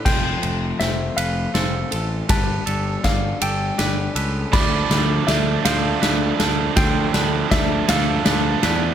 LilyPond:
<<
  \new Staff \with { instrumentName = "Electric slide guitar" } { \time 6/8 \key d \dorian \tempo 4. = 54 g''4 e''8 f''4. | a''4 f''8 g''4. | b''4 e''8 f''4. | g''4 e''8 f''4. | }
  \new Staff \with { instrumentName = "Clean electric guitar" } { \time 6/8 \key d \dorian c''4 r8 b'8 a'4 | b'8 a'4 a'8 b'8 b'8 | d''4 r8 c''8 b'4 | c''8 b'4 a'8 b'8 b'8 | }
  \new Staff \with { instrumentName = "Clean electric guitar" } { \time 6/8 \key d \dorian f8 a8 c'8 a8 c'8 a'8 | g8 g8 d'8 g8 d'8 a'8 | d8 d8 d'8 d8 d'8 a'8 | d8 d8 d'8 d8 d'8 a'8 | }
  \new Staff \with { instrumentName = "Overdriven electric guitar" } { \clef bass \time 6/8 \key d \dorian r2. | r2. | <d f a d'>8 <d f a d'>8 <d f a d'>8 <d f a d'>8 <d f a d'>8 <d f a d'>8 | <d f a d'>8 <d f a d'>8 <d f a d'>8 <d f a d'>8 <d f a d'>8 <d f a d'>8 | }
  \new Staff \with { instrumentName = "Fingered electric bass" } { \clef bass \time 6/8 \key d \dorian f,,8 f,,8 f,,8 f,,8 f,,8 a,,8 | g,,8 g,,8 g,,8 g,,8 g,,8 cis,8 | d,8 d,8 d,8 d,8 d,8 d,8 | d,8 d,8 d,8 d,8 d,8 e,8 | }
  \new DrumStaff \with { instrumentName = "Drums" } \drummode { \time 6/8 <cymc bd sn>8 cymr8 <cymr sn>8 cymr8 <cymr sn>8 cymr8 | <bd cymr sn>8 cymr8 <bd cymr sn>8 cymr8 <cymr sn>8 cymr8 | <cymc bd sn>8 <cymr sn>8 <cymr sn>8 <cymr sn>8 <cymr sn>8 <cymr sn>8 | <bd cymr sn>8 <cymr sn>8 <bd cymr sn>8 <cymr sn>8 <cymr sn>8 <cymr sn>8 | }
>>